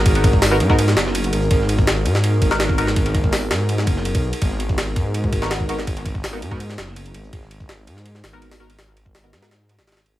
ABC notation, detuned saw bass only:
X:1
M:4/4
L:1/16
Q:1/4=165
K:G#m
V:1 name="Detuned saw bass" clef=bass
G,,,6 G,,4 F,,,4 G,,,2 | G,,,6 G,,4 G,,,6 | G,,,6 G,,4 F,,,2 F,,, B,,, B,,, z | G,,,6 G,,4 G,,,6 |
G,,,6 G,,4 F,,,4 G,,,2 | G,,,6 G,,4 G,,,6 | G,,,6 G,,4- G,, G,,,3 G,,,2 |]